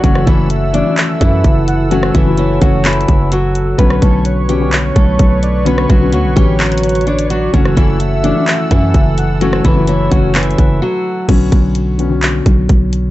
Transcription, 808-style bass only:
X:1
M:4/4
L:1/16
Q:1/4=128
K:Bm
V:1 name="808-style bass" clef=bass
F,,,2 F,,,4- F,,, z3 F,,2 F,,,4- | F,,,2 F,,,4 F,,,4 F,,,6 | B,,,2 B,,,8 B,,,2 B,,,4- | B,,,2 B,,,2 D,, B,,, A,,,8- A,,,2 |
F,,,2 F,,,4- F,,, z3 F,,2 F,,,4- | F,,,2 F,,,4 F,,,4 F,,,2 z4 | B,,,2 B,,,8 B,,,2 B,,,4 |]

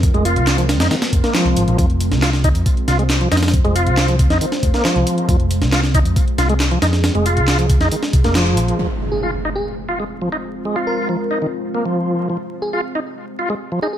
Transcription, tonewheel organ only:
X:1
M:4/4
L:1/16
Q:1/4=137
K:Fm
V:1 name="Tonewheel organ"
z A, F3 F, z E E, z2 B, F,4 | F, z3 F z E z3 F A, z F, E z | z A, F3 F, z E E, z2 B, F,4 | F, z3 F z E z3 F A, z F, E z |
z A, F3 F, z E E, z2 B, F,4 | F, z3 F z E z3 F A, z F, E z | z A, F3 F, z E E, z2 B, F,4 | F, z3 F z E z3 F A, z F, E z |]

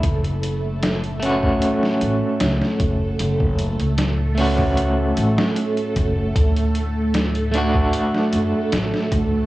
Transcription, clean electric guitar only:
X:1
M:4/4
L:1/8
Q:1/4=76
K:F#m
V:1 name="Clean electric guitar"
z3 [A,CF]4- [A,CF]- | [A,CF]3 [A,CF]4- [A,CF] | z3 [A,DF]4- [A,DF] |]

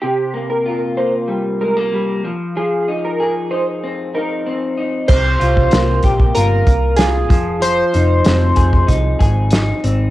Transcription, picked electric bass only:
X:1
M:4/4
L:1/8
Q:1/4=95
K:Fm
V:1 name="Picked electric bass" clef=bass
z8 | z8 | C,, C,, C,, B,,, G,,, C,,2 F,,,- | F,,, F,,, F,,, F,,, C,, A,,,2 A,,, |]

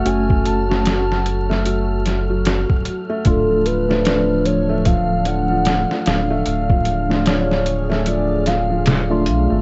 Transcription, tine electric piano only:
X:1
M:4/4
L:1/16
Q:"Swing 16ths" 1/4=75
K:Dlyd
V:1 name="Tine electric piano"
[A,CF]3 [A,CF] z12 | [A,D=F]3 [=F,A,D]12- [F,A,D] | z3 [A,D=F] z8 z [A,DF]3 |]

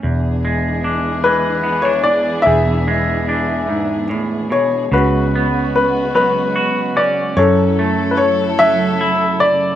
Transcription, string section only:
X:1
M:6/8
L:1/8
Q:3/8=49
K:C#phr
V:1 name="String section"
[E,B,DG]6- | [E,B,DG]6 | [C,G,B,F]6 | [C,F,EA]6 |]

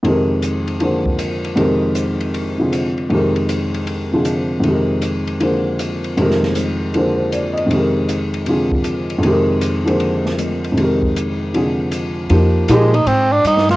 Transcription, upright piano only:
X:1
M:4/4
L:1/16
Q:"Swing" 1/4=157
K:Fdor
V:1 name="Upright piano"
z16 | z16 | z16 | z16 |
z8 z2 c2 d2 e2- | e z12 z3 | z16 | z16 |
z16 |]
V:2 name="Upright piano" clef=bass
[F,,C,E,A,GB]8 [D,F,B,Ac]8 | [F,,C,E,A,GB]8- [F,,C,E,A,GB]2 [C,D,F,FA]6 | [F,,C,E,A,GB]8- [F,,C,E,A,GB]2 [C,D,F,FA]6 | [F,,C,E,A,GB]8 [D,F,B,Ac]8 |
[F,,C,E,A,GB]8 [D,F,B,Ac]8 | [F,,C,E,A,GB]8 [C,D,F,FA]8 | [F,,C,E,A,GB]6 [D,F,B,Ac]8- [D,F,B,Ac]2 | [F,,C,E,A,GB]8 [C,D,F,FA]8 |
[F,B,EG]4 [F,B,EG]2 z8 z2 |]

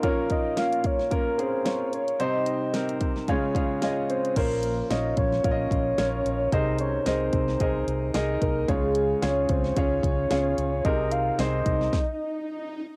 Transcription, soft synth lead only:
X:1
M:4/4
L:1/8
Q:"Swing 16ths" 1/4=111
K:Bbdor
V:1 name="Soft synth lead"
d e f d B c2 d | e3 z4 c | B2 e d d4 | e d c4 z B |
A2 d c d4 | e f e4 z2 |]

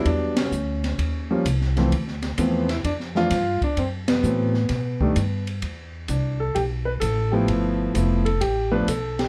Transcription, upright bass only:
X:1
M:4/4
L:1/8
Q:"Swing" 1/4=129
K:Ephr
V:1 name="Upright bass" clef=bass
E,,2 D,,2 _E,,2 C,,2 | D,,2 E,,2 F,,2 G,, z | ^F,,2 A,,2 B,,2 G,,2 | E,,2 C,,2 B,,,2 A,,,2 |
G,,,2 F,,,2 A,,,2 B,,,2 |]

